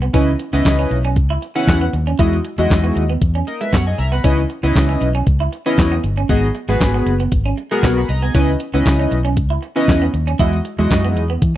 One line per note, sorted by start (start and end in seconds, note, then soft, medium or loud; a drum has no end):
0.02 0.12 B3 medium
0.02 closed hi-hat medium
0.13 0.34 C#2 loud
0.13 0.31 C#4 medium
0.13 0.25 C#4 medium
0.13 0.31 E4 medium
0.13 0.31 B4 medium
0.13 0.32 D#5 medium
0.13 kick loud
0.13 closed hi-hat medium
0.39 muted clean electric guitar stroke soft
0.39 closed hi-hat medium
0.53 0.62 C#2 medium
0.53 0.63 B3 medium
0.53 0.98 C#4 medium
0.53 0.98 E4 medium
0.53 0.98 B4 medium
0.53 0.98 D#5 medium
0.53 closed hi-hat soft
0.65 0.85 C#2 medium
0.65 kick loud
0.65 snare loud
0.65 clap medium
0.65 closed hi-hat medium
0.79 0.89 C#4 medium
0.91 1.16 B1 medium
0.91 muted clean electric guitar stroke soft
0.91 closed hi-hat medium
1.04 1.14 C#4 medium
1.04 closed hi-hat soft
1.16 1.36 C#2 medium
1.16 kick loud
1.16 closed hi-hat medium
1.30 1.40 E4 medium
1.42 muted clean electric guitar stroke soft
1.42 closed hi-hat medium
1.55 1.65 B3 medium
1.55 1.84 C#4 medium
1.55 1.84 E4 medium
1.55 1.84 B4 medium
1.55 1.84 F#5 loud
1.55 closed hi-hat medium
1.67 1.87 E2 medium
1.67 kick loud
1.67 snare loud
1.67 clap medium
1.67 closed hi-hat medium
1.81 1.91 B3 medium
1.93 2.13 D#2 medium
1.93 muted clean electric guitar stroke soft
1.93 closed hi-hat medium
2.07 2.17 C#4 medium
2.07 closed hi-hat medium
2.19 2.39 E2 medium
2.19 2.36 G#3 medium
2.19 2.30 E4 medium
2.19 2.37 E4 medium
2.19 2.37 F#4 medium
2.19 2.37 D#5 medium
2.19 kick loud
2.19 closed hi-hat medium
2.33 closed hi-hat soft
2.45 muted clean electric guitar stroke soft
2.45 closed hi-hat medium
2.58 2.67 E2 loud
2.58 3.03 G#3 medium
2.58 2.68 G#3 medium
2.58 3.03 E4 medium
2.58 3.03 F#4 medium
2.58 3.04 D#5 medium
2.58 closed hi-hat soft
2.70 2.90 E2 medium
2.70 kick loud
2.70 snare medium
2.70 clap medium
2.70 closed hi-hat medium
2.84 2.93 B3 medium
2.84 closed hi-hat soft
2.96 3.16 D#2 medium
2.96 muted clean electric guitar stroke soft
2.96 closed hi-hat medium
3.10 3.19 B3 medium
3.10 closed hi-hat soft
3.21 3.41 E2 medium
3.21 kick loud
3.21 closed hi-hat medium
3.35 3.45 C#4 medium
3.35 closed hi-hat soft
3.47 3.60 A#4 medium
3.47 3.60 D#5 medium
3.47 muted clean electric guitar stroke soft
3.47 closed hi-hat medium
3.61 3.70 G#3 medium
3.61 3.73 B4 medium
3.61 3.72 E5 medium
3.61 closed hi-hat medium
3.73 3.93 F#2 medium
3.73 3.84 B3 medium
3.73 3.86 C#5 medium
3.73 3.86 F#5 medium
3.73 kick loud
3.73 snare loud
3.73 clap medium
3.73 closed hi-hat medium
3.87 3.98 D#5 medium
3.87 3.98 G#5 medium
3.98 4.18 C2 medium
3.98 4.12 E5 medium
3.98 4.11 A#5 medium
3.98 muted clean electric guitar stroke soft
3.98 closed hi-hat medium
4.12 4.22 B3 medium
4.12 4.37 F#5 medium
4.12 4.37 B5 medium
4.12 closed hi-hat medium
4.24 4.44 C#2 loud
4.24 4.41 C#4 medium
4.24 4.35 C#4 medium
4.24 4.42 E4 medium
4.24 4.42 B4 medium
4.24 4.42 D#5 medium
4.24 kick loud
4.24 closed hi-hat medium
4.50 muted clean electric guitar stroke soft
4.50 closed hi-hat medium
4.63 4.73 C#2 medium
4.63 4.73 B3 medium
4.63 5.08 C#4 medium
4.63 5.08 E4 medium
4.63 5.08 B4 medium
4.63 5.09 D#5 medium
4.63 closed hi-hat soft
4.75 4.95 C#2 medium
4.75 kick loud
4.75 snare medium
4.75 clap medium
4.75 closed hi-hat medium
4.89 4.99 C#4 medium
5.01 5.21 B1 medium
5.01 muted clean electric guitar stroke soft
5.01 closed hi-hat medium
5.15 5.24 C#4 medium
5.15 closed hi-hat soft
5.27 5.46 C#2 loud
5.27 kick loud
5.27 closed hi-hat medium
5.40 5.50 E4 medium
5.52 muted clean electric guitar stroke soft
5.52 closed hi-hat medium
5.66 5.76 B3 medium
5.66 5.94 C#4 medium
5.66 5.94 E4 medium
5.66 5.94 B4 medium
5.66 5.94 D#5 loud
5.66 closed hi-hat medium
5.78 5.98 E2 medium
5.78 kick loud
5.78 snare loud
5.78 clap medium
5.78 closed hi-hat medium
5.92 6.01 B3 medium
6.04 6.23 G1 medium
6.04 muted clean electric guitar stroke soft
6.04 closed hi-hat medium
6.17 6.27 C#4 medium
6.17 closed hi-hat medium
6.29 6.49 G#1 loud
6.29 6.40 G#3 medium
6.29 6.47 B3 medium
6.29 6.47 F#4 medium
6.29 6.47 G#4 medium
6.29 6.47 D#5 medium
6.29 kick loud
6.29 closed hi-hat medium
6.55 muted clean electric guitar stroke soft
6.55 closed hi-hat medium
6.68 6.78 G#1 medium
6.68 6.78 G#3 medium
6.68 7.14 B3 medium
6.68 7.14 F#4 medium
6.68 7.14 G#4 medium
6.68 7.14 B4 medium
6.68 closed hi-hat soft
6.80 7.00 G#1 medium
6.80 kick loud
6.80 snare loud
6.80 clap medium
6.80 closed hi-hat medium
6.94 7.04 B3 medium
7.06 7.26 F#1 loud
7.06 muted clean electric guitar stroke soft
7.06 closed hi-hat medium
7.20 7.30 B3 medium
7.20 closed hi-hat soft
7.32 7.52 G#1 medium
7.32 kick loud
7.32 closed hi-hat medium
7.46 7.55 C#4 medium
7.58 muted clean electric guitar stroke soft
7.58 closed hi-hat medium
7.71 7.81 G#3 medium
7.71 7.99 B3 medium
7.71 7.99 F#4 medium
7.71 8.00 G#4 medium
7.71 8.00 A#4 loud
7.71 closed hi-hat medium
7.83 8.03 B1 loud
7.83 7.94 B3 medium
7.83 kick loud
7.83 snare loud
7.83 clap medium
7.83 closed hi-hat medium
7.97 8.09 F#5 medium
7.97 8.08 B5 medium
8.09 8.29 C2 medium
8.09 8.22 D#5 medium
8.09 8.22 A#5 medium
8.09 muted clean electric guitar stroke soft
8.09 closed hi-hat medium
8.22 8.32 B3 medium
8.22 8.34 D#5 medium
8.22 8.47 G#5 medium
8.22 closed hi-hat medium
8.34 8.54 C#2 medium
8.34 8.52 C#4 medium
8.34 8.45 C#4 loud
8.34 8.52 E4 medium
8.34 8.52 B4 medium
8.34 8.52 D#5 medium
8.34 kick loud
8.34 closed hi-hat medium
8.60 muted clean electric guitar stroke soft
8.60 closed hi-hat medium
8.73 8.83 C#2 loud
8.73 8.83 B3 medium
8.73 9.19 C#4 medium
8.73 9.19 E4 medium
8.73 9.19 B4 medium
8.73 9.19 D#5 medium
8.73 closed hi-hat medium
8.86 9.05 C#2 medium
8.86 kick loud
8.86 snare medium
8.86 clap medium
8.86 closed hi-hat medium
8.99 9.09 C#4 medium
9.11 9.37 B1 medium
9.11 muted clean electric guitar stroke soft
9.11 closed hi-hat medium
9.25 9.34 C#4 medium
9.25 closed hi-hat soft
9.37 9.57 C#2 medium
9.37 kick loud
9.37 closed hi-hat medium
9.50 9.60 E4 medium
9.62 muted clean electric guitar stroke soft
9.62 closed hi-hat medium
9.76 9.86 B3 medium
9.76 10.04 C#4 medium
9.76 10.04 E4 medium
9.76 10.04 B4 medium
9.76 10.04 D#5 loud
9.76 closed hi-hat medium
9.88 10.08 E2 medium
9.88 kick loud
9.88 snare loud
9.88 clap medium
9.88 closed hi-hat medium
10.02 10.11 B3 medium
10.14 10.33 D#2 medium
10.14 muted clean electric guitar stroke soft
10.14 closed hi-hat medium
10.27 10.37 C#4 medium
10.27 closed hi-hat medium
10.39 10.59 E2 loud
10.39 10.57 G#3 medium
10.39 10.57 E4 medium
10.39 10.50 E4 medium
10.39 10.57 F#4 medium
10.39 10.57 D#5 medium
10.39 kick loud
10.39 closed hi-hat medium
10.53 closed hi-hat soft
10.65 muted clean electric guitar stroke soft
10.65 closed hi-hat medium
10.78 10.88 E2 medium
10.78 11.24 G#3 medium
10.78 10.88 G#3 medium
10.78 11.24 E4 medium
10.78 11.24 F#4 medium
10.78 11.24 D#5 medium
10.78 closed hi-hat medium
10.91 11.16 F#2 medium
10.91 kick loud
10.91 snare loud
10.91 clap medium
10.91 closed hi-hat medium
11.04 11.14 B3 medium
11.04 closed hi-hat soft
11.16 11.36 E2 medium
11.16 muted clean electric guitar stroke soft
11.16 closed hi-hat medium
11.30 11.40 B3 medium
11.30 closed hi-hat soft
11.42 11.52 E3 medium
11.42 kick loud
11.42 closed hi-hat medium